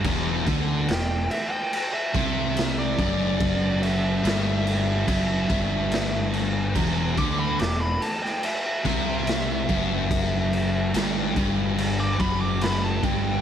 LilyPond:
<<
  \new Staff \with { instrumentName = "Lead electric guitar" } { \time 4/4 \key e \minor \tempo 4 = 72 r4 g''8 e''16 g''8 e''4 d''8.~ | d''8 e''2. r8 | r8 d'''16 b''16 d'''16 b''16 a''16 g''16 e''2~ | e''4 r4 r16 d'''16 b''16 d'''16 b''16 a''16 g''8 | }
  \new Staff \with { instrumentName = "Distorted electric guitar" } { \clef bass \time 4/4 \key e \minor e,8 d8 e,8 r4 c4 fis,8~ | fis,4 g,4 fis,8 g,4. | e,8 d8 e,8 r4 c4 fis,8~ | fis,4 g,8 g,4 fis,4 g,8 | }
  \new Staff \with { instrumentName = "Distorted electric guitar" } { \clef bass \time 4/4 \key e \minor e,8 d8 e,8 r4 c4 fis,8~ | fis,4 g,4 fis,8 g,4. | e,8 d8 e,8 r4 c4 fis,8~ | fis,4 g,8 g,4 fis,4 g,8 | }
  \new Staff \with { instrumentName = "Overdriven electric guitar" } { \clef bass \time 4/4 \key e \minor e,8 d8 e,8 r4 c4 fis,8~ | fis,4 g,4 fis,8 g,4. | e,8 d8 e,8 r4 c4 fis,8~ | fis,4 g,8 g,4 fis,4 g,8 | }
  \new Staff \with { instrumentName = "Fingered electric bass" } { \clef bass \time 4/4 \key e \minor e,,8 d,8 e,,8 r4 c,4 fis,,8~ | fis,,4 g,,4 fis,,8 g,,4. | e,,8 d,8 e,,8 r4 c,4 fis,,8~ | fis,,4 g,,8 g,,4 fis,,4 g,,8 | }
  \new DrumStaff \with { instrumentName = "Drums" } \drummode { \time 4/4 <cymc bd>8 <cymc bd>8 <cymc sn>8 cymc8 cymc8 <cymc bd sn>8 <cymc sn>8 <cymc bd>8 | <cymc bd>8 cymc8 <cymc sn>8 cymc8 <cymc bd>8 <cymc bd>8 <cymc sn>8 cymc8 | <cymc bd>8 <cymc bd>8 <cymc sn>8 cymc16 sn16 cymc8 <cymc bd sn>8 <cymc sn>8 <cymc bd>8 | <cymc bd>8 cymc8 <cymc sn>8 <cymc bd>8 cymc8 <cymc bd>8 <cymc sn>8 <cymc bd>8 | }
>>